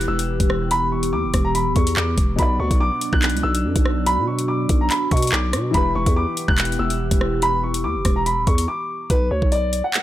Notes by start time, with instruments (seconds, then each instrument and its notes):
Already playing: felt piano E3 E4 G4 B4, analog synth pad E3 B3 G4
0.01 closed hi-hat
0.08 808-style bass E1, grand piano E6
0.19 closed hi-hat
0.40 808-style bass E1, kick, closed hi-hat
0.50 cross-stick
0.71 grand piano B5, closed hi-hat
0.92 grand piano C#6
1.03 closed hi-hat
1.13 808-style bass E2, grand piano D6
1.24 808-style bass E1
1.34 808-style bass E1, kick, cross-stick, closed hi-hat
1.45 grand piano A#5
1.55 grand piano B5, closed hi-hat
1.66 808-style bass D1
1.76 808-style bass E2, grand piano C#6, kick, closed hi-hat
1.87 closed hi-hat
1.97 808-style bass E2, grand piano D6, clap
2.18 808-style bass E1, kick, closed hi-hat
2.36 808-style bass B1, felt piano B2 B3, analog synth pad F#3 D4, grand piano B5, kick, closed hi-hat
2.40 felt piano F#4 D5
2.60 808-style bass D2, grand piano C#6
2.71 808-style bass B1, kick, closed hi-hat
2.80 grand piano D6
3.01 closed hi-hat
3.13 808-style bass B1, grand piano F#6, kick
3.22 clap, closed hi-hat
3.30 closed hi-hat
3.34 808-style bass C#2, closed hi-hat
3.43 808-style bass B1, grand piano E6
3.55 closed hi-hat
3.64 808-style bass F#2
3.76 808-style bass B1, kick, closed hi-hat
3.85 cross-stick
4.06 grand piano B5, closed hi-hat
4.18 808-style bass B2
4.27 grand piano C#6
4.39 closed hi-hat
4.48 grand piano D6
4.69 808-style bass B1, kick, closed hi-hat
4.81 grand piano A#5
4.90 grand piano B5, clap, closed hi-hat
5.11 808-style bass B2, grand piano C#6, kick, closed hi-hat
5.17 closed hi-hat
5.22 closed hi-hat
5.27 closed hi-hat
5.32 808-style bass B1, grand piano D6, clap
5.53 808-style bass B2, cross-stick, closed hi-hat
5.71 808-style bass E1, felt piano E3 E4, analog synth pad E3 B3 G4, grand piano B5, kick, closed hi-hat
5.75 felt piano G4 B4
5.95 808-style bass E1, grand piano C#6
6.06 808-style bass E2, kick, closed hi-hat
6.16 grand piano D6
6.37 closed hi-hat
6.48 808-style bass E1, grand piano F#6, kick
6.58 clap, closed hi-hat
6.65 closed hi-hat
6.72 closed hi-hat
6.79 808-style bass E1, grand piano E6
6.90 closed hi-hat
7.11 808-style bass E1, kick, closed hi-hat
7.21 cross-stick
7.42 grand piano B5, closed hi-hat
7.63 grand piano C#6
7.74 closed hi-hat
7.84 808-style bass E2, grand piano D6
7.95 808-style bass E1
8.05 808-style bass E1, kick, cross-stick, closed hi-hat
8.16 grand piano A#5
8.26 grand piano B5, closed hi-hat
8.37 808-style bass D1
8.47 808-style bass E2, grand piano C#6, kick, closed hi-hat
8.58 closed hi-hat
8.68 grand piano D6
9.10 808-style bass B1, grand piano B4, kick, closed hi-hat
9.31 808-style bass D2, grand piano C#5
9.42 808-style bass B1, kick
9.52 grand piano D5, closed hi-hat
9.73 closed hi-hat
9.84 grand piano F#5
9.94 clap, closed hi-hat